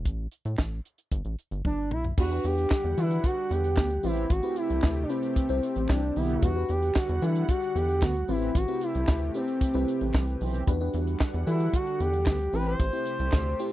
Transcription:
0.05 analog synth bass A1, kick, closed hi-hat
0.32 closed hi-hat
0.45 analog synth bass A2, closed hi-hat
0.58 analog synth bass A1, kick, snare, clap
0.85 closed hi-hat
0.98 closed hi-hat
1.12 analog synth bass G1, kick, closed hi-hat
1.25 analog synth bass A1, closed hi-hat
1.39 closed hi-hat
1.51 analog synth bass G1, closed hi-hat
1.65 analog synth bass G1, analog synth lead D4, kick, high tom
1.91 analog synth bass B1, analog synth lead E4, mid tom
2.04 floor tom
2.18 analog synth bass E2, analog synth pad D3 G3 F#5, fm electric piano D4 F#4 G4 B4, analog synth lead F#4, kick, crash
2.31 fm electric piano D4 G4 B4 F#5, closed hi-hat
2.44 analog synth bass E2, analog synth lead G4, closed hi-hat
2.58 closed hi-hat
2.70 kick, snare, clap
2.84 analog synth bass E2
2.97 analog synth bass E3, fm electric piano D4 F#4 G4 B4, analog synth lead E4, closed hi-hat
3.11 closed hi-hat
3.24 analog synth lead F#4, kick, closed hi-hat
3.51 analog synth bass E2, analog synth lead G4, closed hi-hat
3.64 closed hi-hat
3.77 analog synth bass D2, analog polysynth D3 B3 G4, kick, snare, clap
3.90 closed hi-hat
4.03 analog synth bass A1, analog synth pad C3 A3 G4, analog polysynth E3 C4 G4, fm electric piano C4 E4 G4 B4, analog synth lead E4, open hi-hat
4.17 closed hi-hat
4.30 analog synth bass A1, analog synth lead F#4, kick, closed hi-hat
4.43 fm electric piano C4 E4 G4 B4
4.56 analog synth lead E4, closed hi-hat
4.70 analog synth bass C2, closed hi-hat
4.82 analog synth bass D2, kick, snare, clap
5.03 analog synth lead D4
5.09 fm electric piano C4 E4 G4 B4, analog synth lead C4, closed hi-hat
5.23 closed hi-hat
5.36 kick, closed hi-hat
5.49 analog synth bass C2, fm electric piano C4 E4 G4 C5
5.63 closed hi-hat
5.76 analog synth bass A1, closed hi-hat
5.89 analog synth bass C2, analog polysynth E3 C4 G4, analog synth lead D4, kick, snare, clap
6.02 closed hi-hat
6.16 analog synth bass B1, analog polysynth D3 B3 G4, analog synth lead E4, open hi-hat
6.29 closed hi-hat
6.42 analog synth bass E2, analog synth pad D3 G3 F#5, fm electric piano D4 F#4 G4 B4, analog synth lead F#4, kick, closed hi-hat
6.55 fm electric piano D4 F#4 G4 B4
6.69 analog synth bass E2, analog synth lead G4, closed hi-hat
6.83 closed hi-hat
6.95 analog synth lead F#4, kick, snare, clap
7.09 analog synth bass E2, closed hi-hat
7.22 analog synth bass E3, fm electric piano D4 F#4 G4 A4, analog synth lead E4, closed hi-hat
7.36 closed hi-hat
7.49 analog synth lead F#4, kick, closed hi-hat
7.62 closed hi-hat
7.75 analog synth bass E2, analog synth lead G4, closed hi-hat
7.89 closed hi-hat
8.02 analog synth bass D2, analog polysynth D3 B3 F#4, analog synth lead F#4, kick, snare, clap
8.15 closed hi-hat
8.28 analog synth bass A1, analog synth pad C3 A3 G4, analog polysynth E3 C4 G4, fm electric piano C4 E4 G4 B4, analog synth lead E4, open hi-hat
8.42 closed hi-hat
8.55 analog synth bass A1, analog synth lead F#4, kick, closed hi-hat
8.68 fm electric piano C4 E4 G4 B4
8.81 analog synth lead E4, closed hi-hat
8.95 analog synth bass C2, closed hi-hat
9.07 analog synth bass D2, kick, snare, clap
9.21 closed hi-hat
9.34 fm electric piano C4 E4 G4 B4, analog synth lead C4, closed hi-hat
9.48 closed hi-hat
9.61 kick, closed hi-hat
9.74 analog synth bass C2, fm electric piano C4 E4 G4 B4, closed hi-hat
9.88 closed hi-hat
10.01 analog synth bass A1, closed hi-hat
10.14 analog synth bass C2, analog polysynth E3 C4 G4, kick, snare, clap
10.27 closed hi-hat
10.41 analog synth bass B1, analog polysynth E3 C4 G4, open hi-hat
10.54 closed hi-hat
10.67 analog synth bass E2, analog synth pad D3 G3 F#5, fm electric piano D4 F#4 G4 B4, kick, closed hi-hat
10.81 fm electric piano D4 F#4 G4 B4
10.94 analog synth bass E2, closed hi-hat
11.07 closed hi-hat
11.20 kick, snare, clap
11.34 analog synth bass E2, closed hi-hat
11.47 analog synth bass E3, fm electric piano D4 F#4 G4 A4, analog synth lead E4, closed hi-hat
11.60 closed hi-hat
11.73 analog synth lead F#4, kick, closed hi-hat
11.87 closed hi-hat
12.00 analog synth bass E2, analog synth lead G4, closed hi-hat
12.13 closed hi-hat
12.26 analog synth bass D2, analog polysynth D3 B3 G4, kick, snare, clap
12.40 closed hi-hat
12.53 analog synth bass A1, analog synth pad C3 A3 G4, analog polysynth E3 C4 G4, fm electric piano C4 E4 G4 B4, analog synth lead B4, open hi-hat
12.67 analog synth lead C5, closed hi-hat
12.80 analog synth bass A1, kick, closed hi-hat
12.93 fm electric piano C4 E4 G4 C5, closed hi-hat
13.06 closed hi-hat
13.19 analog synth bass C2, closed hi-hat
13.32 analog synth bass D2, kick, snare, clap
13.59 fm electric piano C4 E4 G4 C5, closed hi-hat

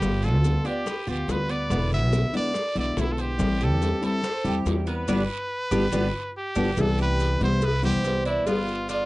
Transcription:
Already playing: trumpet G4, cuban tres B4
0.01 upright bass G1, nylon-string guitar G3 B3 F4, high bongo, long guiro, maracas
0.22 cuban tres F4, trumpet A4, maracas
0.34 upright bass D2
0.43 nylon-string guitar G3 B3 F4, high bongo, short guiro, maracas
0.64 nylon-string guitar B3 F4, cuban tres D4, trumpet G4, short guiro, maracas
0.86 cuban tres B4, muted nylon-string guitar stroke, high bongo, long guiro, maracas
1.07 upright bass D2, nylon-string guitar B3 F4, cuban tres F4, trumpet G4, maracas
1.28 upright bass D2, nylon-string guitar G3 B3 F4, trumpet B4, high bongo, low bongo, short guiro, maracas
1.49 cuban tres B3, trumpet D5, short guiro, maracas
1.70 upright bass E1, nylon-string guitar B2 D3 G#3 B3 E4, cuban tres B3, high bongo, long guiro, maracas
1.92 trumpet E5, high bongo, maracas
2.02 upright bass B1
2.12 nylon-string guitar D3 G#3 B3 E4, cuban tres E4, high bongo, short guiro, maracas
2.33 nylon-string guitar D3 G#3 B3 E4, cuban tres D4, trumpet D5, high bongo, short guiro, maracas
2.54 muted nylon-string guitar stroke, high bongo, long guiro, maracas
2.75 upright bass B1, nylon-string guitar D3 G#3 B3 E4, cuban tres E4, trumpet D5, high bongo, maracas
2.96 upright bass B1, nylon-string guitar D3 G#3 B3 E4, trumpet E4, high bongo, low bongo, short guiro, maracas
3.12 trumpet A4
3.17 trumpet G4, cuban tres C5, short guiro, maracas
3.38 upright bass A1, nylon-string guitar E3 G3 C4 E4, high bongo, long guiro, maracas
3.61 cuban tres G4, trumpet A4, maracas
3.71 upright bass E2
3.81 nylon-string guitar E3 G3 C4 E4, high bongo, short guiro, maracas
4.02 nylon-string guitar G3 C4 E4, cuban tres E4, trumpet A4, short guiro, maracas
4.23 cuban tres C5, muted nylon-string guitar stroke, high bongo, long guiro, maracas
4.44 upright bass E2, nylon-string guitar G3 C4 E4, cuban tres G4, maracas
4.66 upright bass E2, nylon-string guitar E3 G3 C4 E4, high bongo, low bongo, short guiro, maracas
4.87 cuban tres B3, trumpet B4, short guiro, maracas
5.08 upright bass G1, nylon-string guitar D3 G3 B3, cuban tres B3 D4 G4, low bongo, long guiro, maracas
5.71 upright bass G1, nylon-string guitar D3 G3 B3, cuban tres B3 D4 G4, low bongo, long guiro, maracas
5.92 upright bass G1, nylon-string guitar D3 G3 B3, cuban tres B3 D4 G4, low bongo, long guiro, maracas
6.38 trumpet G4
6.56 upright bass G1, nylon-string guitar D3 G3 B3, cuban tres B3 D4 G4, low bongo, long guiro, maracas
6.77 upright bass C2, nylon-string guitar C3 E3 G3 B3 E4, trumpet A4, cowbell, long guiro, maracas
6.98 cuban tres G4, trumpet B4, maracas
7.19 cowbell, short guiro, maracas
7.40 upright bass C2, nylon-string guitar E3 G3 B3 E4, cuban tres E4, trumpet C5, cowbell, short guiro, maracas
7.61 trumpet B4, muted nylon-string guitar stroke, cowbell, long guiro, maracas
7.82 nylon-string guitar E3 G3 B3 E4, trumpet G4, cuban tres C5, maracas
7.94 upright bass C2
8.04 nylon-string guitar E3 G3 B3 E4, cowbell, short guiro, maracas
8.25 cuban tres D4, trumpet E4, short guiro, maracas
8.46 upright bass G1, nylon-string guitar G3 B3 F4, cuban tres B3, trumpet F4, cowbell, long guiro, maracas
8.68 maracas
8.89 cuban tres D4, trumpet F4, cowbell, short guiro, maracas

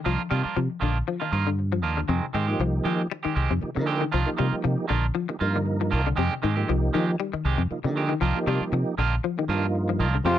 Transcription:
0.04 fingered electric bass C2, clean electric guitar D#3 F3 A#3 D4 F4
0.30 fingered electric bass C3, clean electric guitar D#3 G3 A#3 D4 F4
0.43 clean electric guitar A#3 D4 F4, muted fingered electric bass stroke
0.56 fingered electric bass C3, clean electric guitar F3
0.80 fingered electric bass A#1, clean electric guitar D3 D#3 A#3 D4 F4
1.08 clean electric guitar F3
1.20 clean electric guitar D#3 A#3 D4 F4
1.31 fingered electric bass G2, clean electric guitar D#3 A#3 F4
1.47 clean electric guitar D3
1.72 clean electric guitar F3
1.82 fingered electric bass D#2, clean electric guitar D#3 A#3 D4 F4
1.97 clean electric guitar D3
2.08 fingered electric bass F2, clean electric guitar C3 D#3 G#3 C4, muted clean electric guitar stroke
2.33 fingered electric bass G#2, clean electric guitar D#3 G#3 C4 G4
2.47 tonewheel organ F3 A#3 D#4 G4, clean electric guitar G#3 C4 G4
2.60 fingered electric bass C2, clean electric guitar F3
2.84 clean electric guitar D#3 G#3 C4 G4, fingered electric bass F3
3.11 muted clean electric guitar stroke
3.23 clean electric guitar D#3 G#3 C4 G4, muted fingered electric bass stroke
3.35 fingered electric bass C2, clean electric guitar D#3 G#3 C4 G4
3.51 fingered electric bass F2, clean electric guitar C3
3.62 tonewheel organ F3 A#3 D#4 G4, muted fingered electric bass stroke
3.75 clean electric guitar D3, fingered electric bass D3, tonewheel organ F3 A#3 D#4 A#4
3.86 clean electric guitar D#3 G#3 C4 G4
4.01 clean electric guitar D#3
4.12 fingered electric bass C2, clean electric guitar D#3 F3 A#3 D4 F4
4.26 tonewheel organ F3 A#3 D#4 G4
4.37 fingered electric bass C3, clean electric guitar D#3 G3 A#3 F4, muted clean electric guitar stroke
4.53 muted fingered electric bass stroke
4.64 fingered electric bass C3, clean electric guitar F3
4.88 fingered electric bass A#1, clean electric guitar D3 D#3 A#3 D4 F4
5.15 clean electric guitar F3
5.29 tonewheel organ F3 A#3 D#4 G4, muted clean electric guitar stroke
5.39 fingered electric bass G2, tonewheel organ F3 A#3 D#4 A#4, clean electric guitar A#3 F4, muted clean electric guitar stroke
5.56 clean electric guitar D3
5.81 clean electric guitar F3
5.91 fingered electric bass C2, clean electric guitar D#3 A#3 D4 F4
6.07 clean electric guitar D3
6.16 fingered electric bass F2, clean electric guitar C3 D#3 G#3 C4 G4
6.42 fingered electric bass G#2, clean electric guitar D#3 G#3 C4 G4
6.56 tonewheel organ F3 A#3 D#4 G4, clean electric guitar G#3 C4 G4
6.69 fingered electric bass C2, clean electric guitar F3
6.93 clean electric guitar D#3 G#3 C4 G4, fingered electric bass F3
7.20 clean electric guitar G3
7.33 clean electric guitar D#3, muted fingered electric bass stroke
7.45 fingered electric bass C2, clean electric guitar D#3 G#3 C4 G4
7.58 fingered electric bass F2, clean electric guitar C3
7.71 tonewheel organ F3 A#3 D#4 F4, muted fingered electric bass stroke
7.84 clean electric guitar D3, fingered electric bass D3, tonewheel organ F3 A#3 D#4 G4
7.96 clean electric guitar D#3 G#3 C4 G4
8.09 clean electric guitar D#3
8.21 fingered electric bass C2, clean electric guitar D#3 F3 A#3 D4 F4
8.36 tonewheel organ F3 A#3 D#4 G4
8.47 fingered electric bass C3, clean electric guitar D#3 G3 A#3 D4 F4
8.61 muted fingered electric bass stroke
8.72 fingered electric bass C3, clean electric guitar F3
8.98 fingered electric bass A#1, clean electric guitar D3 D#3 A#3 D4 F4
9.24 clean electric guitar F3
9.37 clean electric guitar D#3, tonewheel organ F3 A#3 D#4 G4
9.48 fingered electric bass G2, clean electric guitar D#3 A#3 D4 F4, tonewheel organ F3 A#3 D#4 F4
9.89 clean electric guitar F3
9.99 fingered electric bass C2, clean electric guitar D#3 A#3 D4 F4
10.15 clean electric guitar D3
10.25 fingered electric bass F2, baritone saxophone F2, clean electric guitar C3 D#3 G#3 C4 G4, trombone C3, flugelhorn F4

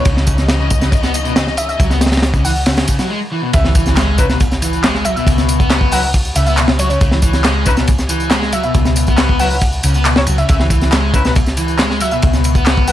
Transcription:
Already playing: string section E3 C#4 D#4
0.05 picked electric bass C#2, overdriven electric guitar C#3, string section D#5, kick, ride, tambourine
0.17 snare
0.27 kick, ride, tambourine
0.38 snare, tambourine
0.49 overdriven electric guitar C#3, snare, ride, tambourine
0.59 overdriven electric guitar C#3
0.70 kick, ride, tambourine
0.81 overdriven electric guitar C#3, snare, tambourine
0.92 kick, ride, tambourine
1.03 overdriven electric guitar B3, snare, tambourine
1.14 ride, tambourine
1.25 overdriven electric guitar B2, tambourine
1.36 overdriven electric guitar C#3, snare, ride, tambourine
1.47 snare
1.57 synth pluck E5, ride, tambourine
1.69 synth pluck E5, tambourine
1.79 picked electric bass C#2, overdriven electric guitar F#3, kick, ride, tambourine
1.90 overdriven electric guitar B3, snare, tambourine
2.01 snare, ride, tambourine
2.06 snare, ride
2.12 snare, ride, tambourine
2.17 snare, ride
2.23 snare, ride, tambourine
2.34 overdriven electric guitar C#3, kick, tambourine
2.44 overdriven electric guitar E3, synth pluck F#5, open hi-hat, tambourine
2.56 tambourine
2.66 overdriven electric guitar C#3, snare, ride, tambourine
2.77 snare, ride, tambourine
2.88 overdriven electric guitar C#3, kick, ride, tambourine
2.99 overdriven electric guitar F#3, snare, tambourine
3.10 overdriven electric guitar G#3
3.32 overdriven electric guitar E3
3.42 overdriven electric guitar B2
3.53 picked electric bass C#2, overdriven electric guitar C#3, synth pluck E5, kick, ride, tambourine, impact
3.64 overdriven electric guitar E3, snare
3.75 overdriven electric guitar E3, kick, ride, tambourine
3.86 snare, tambourine
3.97 overdriven electric guitar G#3, snare, clap, ride, tambourine
4.18 overdriven electric guitar C#3, horn section C#4 D#4 E4 B4, kick, ride, tambourine
4.29 overdriven electric guitar B2, horn section C#4 D#4 E4 B4, snare, tambourine
4.40 kick, ride, tambourine
4.51 snare, tambourine
4.62 overdriven electric guitar E3, ride, tambourine
4.73 tambourine
4.83 overdriven electric guitar G#3, snare, clap, ride, tambourine
4.95 snare
5.05 overdriven electric guitar F#3, synth pluck E5, ride, tambourine
5.16 overdriven electric guitar B2, synth pluck E5, tambourine
5.27 picked electric bass C#2, kick, ride, tambourine
5.38 snare, tambourine
5.49 ride, tambourine
5.59 overdriven electric guitar B3, kick, tambourine
5.70 snare, clap, ride, tambourine
5.81 kick
5.91 overdriven electric guitar F#3, horn section C#4 D#4 E4 B4, synth pluck F#5, open hi-hat, tambourine
6.03 horn section C#4 D#4 E4 B4, tambourine
6.14 kick, ride, tambourine
6.25 tambourine
6.36 picked electric bass C#2, overdriven electric guitar C#3, synth pluck E5, ride, tambourine
6.46 overdriven electric guitar B3, synth pluck E5, tambourine
6.57 overdriven electric guitar B2, clap, ride, tambourine
6.68 snare
6.79 overdriven electric guitar F#3, synth pluck C#5, ride, tambourine
6.90 overdriven electric guitar C#3, synth pluck C#5, ride, tambourine
7.01 picked electric bass C#2, overdriven electric guitar C#3, kick, ride, tambourine
7.11 overdriven electric guitar E3, snare
7.22 overdriven electric guitar E3, kick, ride, tambourine
7.33 snare, tambourine
7.44 overdriven electric guitar G#3, snare, clap, ride, tambourine
7.66 overdriven electric guitar C#3, horn section C#4 D#4 E4 B4, kick, ride, tambourine
7.76 overdriven electric guitar B2, horn section C#4 D#4 E4 B4, snare, tambourine
7.87 kick, ride, tambourine
7.98 snare, tambourine
8.09 overdriven electric guitar E3, ride, tambourine
8.20 tambourine
8.31 overdriven electric guitar G#3, snare, clap, ride, tambourine
8.42 snare
8.52 overdriven electric guitar F#3, synth pluck E5, ride, tambourine
8.63 overdriven electric guitar B2, synth pluck E5, tambourine
8.74 picked electric bass C#2, kick, ride, tambourine
8.85 snare, tambourine
8.96 ride, tambourine
9.07 overdriven electric guitar B3, kick, tambourine
9.18 snare, clap, ride, tambourine
9.29 kick
9.39 overdriven electric guitar F#3, horn section C#4 D#4 E4 B4, synth pluck F#5, open hi-hat, tambourine
9.51 horn section C#4 D#4 E4 B4, tambourine
9.61 kick, ride, tambourine
9.72 tambourine
9.83 picked electric bass C#2, overdriven electric guitar C#3, ride, tambourine
9.94 overdriven electric guitar B3, tambourine
10.05 overdriven electric guitar B2, clap, ride, tambourine
10.16 horn section C#4 D#4 E4 C#5, snare
10.26 picked electric bass C#2, overdriven electric guitar F#3, ride, tambourine
10.38 overdriven electric guitar C#3, synth pluck E5, ride, tambourine
10.49 picked electric bass C#2, overdriven electric guitar C#3, synth pluck E5, kick, ride, tambourine
10.60 overdriven electric guitar E3, snare
10.70 overdriven electric guitar E3, kick, ride, tambourine
10.81 snare, tambourine
10.92 overdriven electric guitar G#3, snare, clap, ride, tambourine
11.14 overdriven electric guitar C#3, horn section C#4 D#4 E4 B4, kick, ride, tambourine
11.25 overdriven electric guitar B2, horn section C#4 D#4 E4 B4, snare, tambourine
11.35 kick, ride, tambourine
11.46 snare, tambourine
11.57 overdriven electric guitar E3, ride, tambourine
11.68 tambourine
11.79 overdriven electric guitar G#3, snare, clap, ride, tambourine
11.90 snare
12.00 overdriven electric guitar F#3, synth pluck E5, ride, tambourine
12.11 overdriven electric guitar B2, synth pluck E5, tambourine
12.22 picked electric bass C#2, kick, ride, tambourine
12.33 snare, tambourine
12.44 ride, tambourine
12.55 overdriven electric guitar B3, kick, tambourine
12.66 snare, clap, ride, tambourine
12.77 kick
12.87 overdriven electric guitar F#3, horn section C#4 D#4 E4 B4, synth pluck F#5, open hi-hat, tambourine

